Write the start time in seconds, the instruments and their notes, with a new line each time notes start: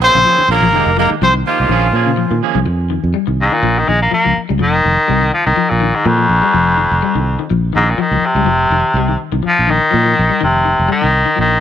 0.01 clean electric guitar F3 A#3 C#4 G#4, tenor saxophone C4, trumpet C5
0.15 fingered electric bass A#1, clean electric guitar C#3
0.25 clean electric guitar F3 A#3 C#4 G#4
0.38 clean electric guitar D#3, muted fingered electric bass stroke
0.48 fingered electric bass A#1, clean electric guitar F3 A#3 C#4 G#4, tenor saxophone A#3, trumpet A#4
0.61 fingered electric bass A#1, clean electric guitar F3
0.73 fingered electric bass F1, clean electric guitar D#3 G#3 A#3 D#4 G4
0.86 fingered electric bass F1
0.97 clean electric guitar F3 G#3 A#3 D#4 G4, tenor saxophone A#3, trumpet A#4
1.10 clean electric guitar D#3
1.22 fingered electric bass C2, clean electric guitar F3, tenor saxophone C4, trumpet C5
1.34 clean electric guitar D#3
1.46 tenor saxophone F3, clean electric guitar A#3 D#4 G4, trumpet F4
1.60 fingered electric bass C2, clean electric guitar A#3 D#4 G4
1.69 fingered electric bass A#1, clean electric guitar D#3 F3 A#3 C#4 G#4
1.93 fingered electric bass A#2, clean electric guitar F3 A#3 C#4 G#4
2.06 clean electric guitar C#3
2.17 clean electric guitar F3
2.31 fingered electric bass A#2, clean electric guitar D#3
2.43 clean electric guitar F3 A#3 C#4 G#4
2.55 fingered electric bass C2, clean electric guitar F3
2.65 fingered electric bass F2, muted clean electric guitar stroke
2.90 clean electric guitar D#3
3.04 fingered electric bass F2
3.14 clean electric guitar G3
3.27 fingered electric bass C2, clean electric guitar D#3
3.42 baritone saxophone G#2
3.52 baritone saxophone A#2, clean electric guitar D#3
3.63 fingered electric bass A#1, clean electric guitar F3
3.78 baritone saxophone D#3
3.88 fingered electric bass A#1, clean electric guitar D#3, baritone saxophone G#3
4.02 baritone saxophone A#3
4.11 clean electric guitar F3, baritone saxophone A#3, muted fingered electric bass stroke
4.25 fingered electric bass C#2, clean electric guitar F3
4.37 muted fingered electric bass stroke
4.49 fingered electric bass C#2, clean electric guitar G3
4.59 fingered electric bass F1, baritone saxophone D#3, clean electric guitar F3
4.84 fingered electric bass F1, clean electric guitar D#3
5.08 fingered electric bass C2, clean electric guitar G3
5.22 clean electric guitar D#3
5.34 baritone saxophone F3
5.46 fingered electric bass C2, baritone saxophone D#3, clean electric guitar D#3
5.56 clean electric guitar F3
5.70 fingered electric bass A#1, baritone saxophone A#2
5.81 clean electric guitar D#3
5.95 baritone saxophone G#2
6.05 baritone saxophone F2, fingered electric bass A#2, clean electric guitar F3
6.17 clean electric guitar F3
6.29 fingered electric bass A#1
6.42 clean electric guitar G3
6.54 fingered electric bass F1, clean electric guitar F3
6.77 clean electric guitar D#3
6.91 fingered electric bass F1
7.02 clean electric guitar G3
7.15 fingered electric bass C2, clean electric guitar D#3
7.39 clean electric guitar D#3
7.50 fingered electric bass A#1, clean electric guitar F3
7.73 fingered electric bass A#1, baritone saxophone G#2, clean electric guitar D#3
7.90 baritone saxophone A#2
7.98 baritone saxophone D#3, clean electric guitar F3, muted fingered electric bass stroke
8.11 fingered electric bass C#2, clean electric guitar F3
8.26 baritone saxophone C3
8.35 fingered electric bass C#2, clean electric guitar G3
8.45 fingered electric bass F1, clean electric guitar F3
8.70 fingered electric bass F1, clean electric guitar D#3
8.94 fingered electric bass C2, clean electric guitar G3
9.09 clean electric guitar D#3
9.32 fingered electric bass C2, clean electric guitar D#3
9.43 clean electric guitar F3, baritone saxophone F3, muted fingered electric bass stroke
9.59 fingered electric bass A#1
9.68 clean electric guitar D#3, baritone saxophone D#3
9.91 fingered electric bass A#2, clean electric guitar F3
10.04 clean electric guitar F3
10.19 fingered electric bass A#1
10.29 clean electric guitar G3
10.41 fingered electric bass F1, baritone saxophone C3, clean electric guitar D#3
10.65 clean electric guitar D#3
10.79 fingered electric bass F1
10.89 baritone saxophone D#3, clean electric guitar G3
11.01 fingered electric bass C2, clean electric guitar D#3
11.26 clean electric guitar D#3
11.36 fingered electric bass A#1, clean electric guitar F3
11.40 baritone saxophone D#3